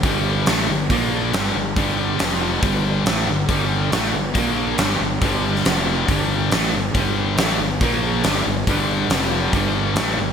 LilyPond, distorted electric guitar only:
\new Staff \with { instrumentName = "Distorted electric guitar" } { \clef bass \time 4/4 \key g \minor \tempo 4 = 139 <g, d g>4 <a, e a>8 <g, d>8 <bes, f bes>4 <g, d g>8 <g, d>8 | <g, d g>4 <f, c f>4 <g, d g>4 <a, e a>8 <g, d>8 | <g, d g>4 <a, e a>8 <g, d>8 <bes, f bes>4 <g, d g>8 <g, d>8 | <g, d g>4 <f, c f>4 <g, d g>4 <a, e a>8 <g, d>8 |
<g, d g>4 <a, e a>8 <g, d>8 <bes, f bes>4 <g, d g>8 <g, d>8 | <g, d g>4 <f, c f>4 <g, d g>4 <a, e a>8 <g, d>8 | }